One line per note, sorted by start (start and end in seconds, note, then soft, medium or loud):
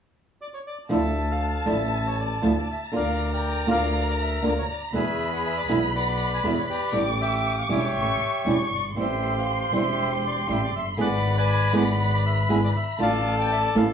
0.41 0.47 D5 medium
0.54 0.59 C#5 medium
0.67 0.78 D5 medium
0.89 1.63 D2 medium
0.89 0.99 D3 medium
0.89 0.99 F3 medium
0.89 0.99 A3 medium
0.89 0.99 D4 medium
0.89 1.00 E4 medium
0.89 1.30 A4 soft
0.89 1.31 E5 medium
0.89 2.89 A5 medium
1.31 1.67 A4 soft
1.31 1.65 F5 medium
1.65 2.38 A1 medium
1.65 1.75 D3 medium
1.65 1.75 F3 medium
1.65 1.75 A3 medium
1.65 1.75 D4 medium
1.65 1.76 E4 medium
1.65 2.64 A4 medium
1.65 2.06 E5 medium
2.07 2.19 C#5 medium
2.20 2.42 D5 medium
2.42 2.64 D2 medium
2.42 2.51 D3 medium
2.42 2.51 F3 medium
2.42 2.51 A3 medium
2.42 2.51 D4 medium
2.42 2.52 E4 medium
2.42 2.56 E5 medium
2.58 2.69 D5 medium
2.71 2.82 E5 medium
2.92 3.64 D2 medium
2.92 3.01 D3 medium
2.92 3.02 A#3 medium
2.92 3.02 D4 medium
2.92 3.02 F4 medium
2.92 4.93 A#5 medium
2.96 3.31 A#4 soft
2.96 3.31 D5 medium
2.96 3.30 F5 medium
3.33 3.69 A#4 soft
3.33 3.69 D5 soft
3.33 3.67 G5 medium
3.67 4.40 D2 medium
3.67 3.76 D3 medium
3.67 3.76 A#3 medium
3.67 3.77 D4 medium
3.67 3.77 F4 medium
3.67 4.65 A#4 medium
3.67 4.08 D5 medium
3.71 4.08 F5 medium
4.10 4.14 D5 medium
4.22 4.43 E5 medium
4.42 4.64 D2 medium
4.42 4.52 D3 medium
4.42 4.52 A#3 medium
4.42 4.52 D4 medium
4.42 4.52 F4 medium
4.47 4.51 D5 medium
4.59 4.64 C#5 medium
4.71 4.82 D5 medium
4.93 5.65 E2 medium
4.93 5.02 B2 medium
4.93 5.02 D3 medium
4.93 5.03 G#3 medium
4.93 5.03 B3 medium
4.93 5.03 E4 medium
4.93 5.90 G#4 medium
4.93 5.90 B4 medium
4.93 5.30 E5 medium
4.93 6.94 B5 medium
5.33 5.38 F#5 medium
5.45 5.57 E5 medium
5.57 5.63 D5 medium
5.68 6.40 B1 medium
5.68 5.77 B2 medium
5.68 5.78 D3 medium
5.68 5.78 G#3 medium
5.68 5.78 B3 medium
5.68 5.78 E4 medium
5.68 5.82 E5 medium
5.95 6.91 B4 medium
5.95 6.69 D5 medium
5.95 6.30 F#5 medium
6.34 6.39 G#5 medium
6.43 6.65 E2 medium
6.43 6.52 B2 medium
6.43 6.53 D3 medium
6.43 6.53 G#3 medium
6.43 6.53 B3 medium
6.43 6.53 E4 medium
6.43 6.58 E5 medium
6.58 6.63 C#5 medium
6.69 7.19 G4 medium
6.69 7.21 D5 medium
6.92 7.66 A1 medium
6.92 7.02 D3 medium
6.92 7.02 G3 medium
6.92 7.02 D4 medium
6.92 7.03 E4 medium
6.92 7.95 D6 medium
7.21 7.69 G4 medium
7.21 7.55 E5 medium
7.58 7.64 F5 medium
7.69 7.91 E1 medium
7.69 7.78 E3 medium
7.69 7.78 G3 medium
7.69 7.79 C#4 medium
7.69 7.79 E4 medium
7.69 8.68 G4 medium
7.69 8.61 C#5 medium
7.69 8.49 E5 medium
7.95 8.16 A1 medium
7.95 8.42 C#6 medium
8.45 8.67 E1 medium
8.45 8.54 E3 medium
8.45 8.55 G3 medium
8.45 8.55 C#4 medium
8.45 8.55 E4 medium
8.45 8.93 C#6 medium
8.49 8.60 D5 medium
8.62 8.67 C#5 medium
8.71 8.95 G1 medium
8.71 8.86 D5 medium
8.96 9.68 A1 medium
8.96 9.05 E3 medium
8.96 9.06 G3 medium
8.96 9.06 C4 medium
8.96 9.06 E4 medium
8.96 9.74 G4 medium
8.96 9.36 C5 medium
8.96 10.94 C6 medium
9.01 9.34 E5 medium
9.38 9.74 C5 soft
9.38 9.72 F5 medium
9.72 10.44 E1 medium
9.72 9.81 E3 medium
9.72 9.82 G3 medium
9.72 9.82 C4 medium
9.72 9.82 E4 medium
9.72 10.71 G4 medium
9.72 10.12 C5 medium
9.77 10.10 E5 medium
10.14 10.25 C5 medium
10.27 10.37 D5 medium
10.47 10.69 A1 medium
10.47 10.57 E3 medium
10.47 10.57 G3 medium
10.47 10.57 C4 medium
10.47 10.57 E4 medium
10.51 10.62 E5 medium
10.64 10.74 D5 medium
10.73 10.98 F#1 medium
10.73 10.87 E5 medium
10.97 11.70 G#1 medium
10.97 11.07 D3 medium
10.97 11.07 G#3 medium
10.97 11.07 B3 medium
10.97 11.07 E4 medium
10.97 11.08 G#4 medium
10.97 11.36 B4 medium
10.97 11.36 D5 medium
10.97 12.99 B5 medium
11.01 11.35 F#5 medium
11.38 11.75 B4 medium
11.38 11.74 D5 medium
11.38 11.72 G#5 medium
11.73 12.45 G#1 medium
11.73 11.82 D3 medium
11.73 11.82 G#3 medium
11.73 11.83 B3 medium
11.73 11.83 E4 medium
11.73 11.83 G#4 medium
11.73 12.71 B4 medium
11.73 12.12 D5 medium
11.73 12.14 F#5 medium
12.14 12.26 D5 medium
12.26 12.50 E5 medium
12.49 12.70 G#1 medium
12.49 12.58 D3 medium
12.49 12.58 G#3 medium
12.49 12.58 B3 medium
12.49 12.58 E4 medium
12.49 12.59 G#4 medium
12.49 12.57 E5 medium
12.64 12.69 D5 medium
12.76 12.99 E5 medium
12.98 13.71 A1 medium
12.98 13.08 D3 medium
12.98 13.08 A3 medium
12.98 13.08 D4 medium
12.98 13.09 F4 medium
12.98 13.93 A4 medium
12.98 13.62 D5 medium
12.98 13.93 A5 medium
13.03 13.36 F5 medium
13.39 13.51 G5 medium
13.52 13.57 E5 medium
13.64 13.76 D5 medium
13.75 13.93 A1 medium
13.75 13.84 E3 medium
13.75 13.84 A3 medium
13.75 13.84 C#4 medium
13.75 13.85 E4 medium
13.75 13.88 F5 medium